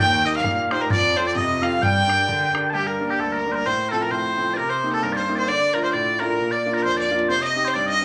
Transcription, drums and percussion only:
0.44 bodhran
0.71 bodhran
0.90 bodhran
1.36 bodhran
1.63 bodhran
1.83 bodhran
2.09 bodhran
2.29 bodhran
2.55 bodhran

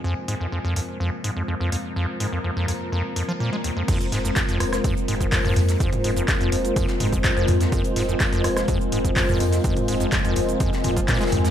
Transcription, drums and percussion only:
0.28 open hi-hat
0.76 open hi-hat
1.24 open hi-hat
1.72 open hi-hat
2.20 open hi-hat
2.68 open hi-hat
3.16 open hi-hat
3.64 open hi-hat
3.88 kick, closed hi-hat, tambourine, crash, shaker
4.01 closed hi-hat, shaker
4.12 snare, open hi-hat, tambourine
4.25 shaker
4.35 kick, snare, clap, closed hi-hat, tambourine, shaker
4.49 snare, closed hi-hat, shaker
4.60 cross-stick, open hi-hat, tambourine
4.72 cross-stick, snare, closed hi-hat, shaker
4.84 kick, closed hi-hat, tambourine, shaker
4.97 shaker
5.08 open hi-hat, tambourine
5.21 kick, closed hi-hat, shaker
5.32 kick, snare, clap, closed hi-hat, open hi-hat, shaker
5.45 mid tom, shaker
5.56 open hi-hat, tambourine
5.69 snare, closed hi-hat, shaker
5.80 kick, closed hi-hat, tambourine, shaker
5.93 closed hi-hat, mid tom, shaker
6.04 open hi-hat, tambourine
6.16 closed hi-hat, shaker
6.28 kick, snare, clap, closed hi-hat, tambourine, shaker
6.41 closed hi-hat, shaker
6.52 open hi-hat, tambourine
6.65 closed hi-hat, shaker
6.76 kick, closed hi-hat, tambourine, shaker
6.87 snare, shaker
7.00 mid tom, open hi-hat, tambourine
7.13 kick, closed hi-hat, shaker
7.24 kick, snare, clap, closed hi-hat, tambourine, shaker
7.37 shaker
7.47 mid tom, open hi-hat, tambourine
7.60 snare, closed hi-hat, shaker
7.72 kick, closed hi-hat, tambourine, shaker
7.84 closed hi-hat, shaker
7.96 snare, open hi-hat, tambourine
8.09 shaker
8.20 kick, snare, clap, closed hi-hat, tambourine, shaker
8.32 snare, closed hi-hat, shaker
8.44 cross-stick, open hi-hat, tambourine
8.57 cross-stick, snare, closed hi-hat, shaker
8.68 kick, closed hi-hat, tambourine, shaker
8.81 shaker
8.92 open hi-hat, tambourine
9.05 kick, closed hi-hat, shaker
9.16 kick, snare, clap, closed hi-hat, open hi-hat, shaker
9.29 mid tom, shaker
9.40 open hi-hat, tambourine
9.52 snare, closed hi-hat, shaker
9.64 kick, closed hi-hat, tambourine, shaker
9.77 closed hi-hat, mid tom, shaker
9.88 open hi-hat, tambourine
10.00 closed hi-hat, shaker
10.12 kick, snare, clap, closed hi-hat, tambourine, shaker
10.25 closed hi-hat, shaker
10.36 open hi-hat, tambourine
10.49 closed hi-hat, shaker
10.60 kick, closed hi-hat, tambourine, shaker
10.73 snare, shaker
10.84 mid tom, open hi-hat, tambourine
10.97 kick, closed hi-hat, shaker
11.08 kick, snare, clap, closed hi-hat, tambourine, shaker
11.14 snare, tambourine
11.21 snare, tambourine, shaker
11.26 snare, tambourine
11.31 mid tom, open hi-hat, tambourine
11.45 snare, closed hi-hat, shaker

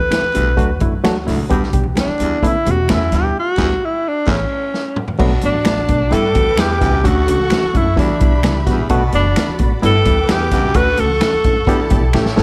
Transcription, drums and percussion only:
0.10 finger snap, snare, closed hi-hat, high conga
0.22 high conga
0.34 closed hi-hat, muted conga
0.57 kick, closed hi-hat
0.80 kick, closed hi-hat, high conga
1.04 finger snap, snare, closed hi-hat, high conga
1.27 snare, open hi-hat, muted conga, high conga
1.38 low conga
1.50 kick, closed hi-hat, muted conga, low conga
1.63 snare
1.73 kick, closed hi-hat
1.84 high conga
1.95 finger snap, snare, closed hi-hat, muted conga, high conga
2.07 high conga
2.19 closed hi-hat, muted conga
2.43 kick, closed hi-hat, muted conga
2.65 closed hi-hat, muted conga, high conga
2.88 finger snap, snare, closed hi-hat, muted conga, high conga
3.11 snare, closed hi-hat, muted conga, high conga
3.22 low conga
3.58 kick, snare, crash
4.27 kick, snare, crash
4.74 snare
4.96 mid tom
5.08 floor tom
5.19 kick, crash, muted conga, low conga
5.41 closed hi-hat
5.54 high conga
5.65 finger snap, snare, closed hi-hat, high conga
5.78 high conga
5.88 kick, closed hi-hat, muted conga, low conga
6.12 closed hi-hat, muted conga
6.35 kick, closed hi-hat, muted conga, high conga
6.57 finger snap, snare, closed hi-hat, muted conga, high conga
6.81 kick, snare, closed hi-hat, high conga
6.93 low conga
7.05 kick, closed hi-hat, muted conga, low conga
7.28 closed hi-hat, muted conga
7.39 high conga
7.50 finger snap, snare, closed hi-hat, muted conga, high conga
7.63 high conga
7.75 kick, closed hi-hat, muted conga, low conga
7.97 kick, closed hi-hat, muted conga
8.20 kick, closed hi-hat, muted conga, high conga
8.43 finger snap, snare, closed hi-hat, muted conga, high conga
8.66 kick, snare, closed hi-hat, muted conga, high conga
8.78 low conga
8.89 kick, closed hi-hat, muted conga, low conga
9.12 closed hi-hat
9.23 high conga
9.36 finger snap, snare, closed hi-hat, muted conga, high conga
9.49 high conga
9.59 kick, closed hi-hat, muted conga, low conga
9.83 closed hi-hat
10.05 kick, closed hi-hat, muted conga, high conga
10.29 finger snap, snare, closed hi-hat, high conga
10.51 kick, snare, closed hi-hat, high conga
10.64 low conga
10.74 kick, closed hi-hat, muted conga, low conga
10.97 closed hi-hat
11.09 high conga
11.21 finger snap, snare, closed hi-hat, muted conga, high conga
11.33 high conga
11.44 kick, closed hi-hat, muted conga, low conga
11.67 kick, closed hi-hat, muted conga
11.90 kick, closed hi-hat, high conga
12.13 finger snap, snare, muted conga, high conga
12.26 snare
12.37 snare, muted conga, high conga

